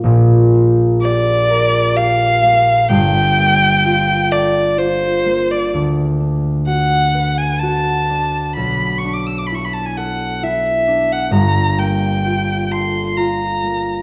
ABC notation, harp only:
X:1
M:3/4
L:1/8
Q:1/4=64
K:Gphr
V:1 name="Harp"
[B,,,B,,B,F] B, G B G B, | [G,,,G,,] B, F =A F B, | D,, D ^F =B F D | =B,,, D =E =A E D |
[G,,,G,,] B, F =A F B, |]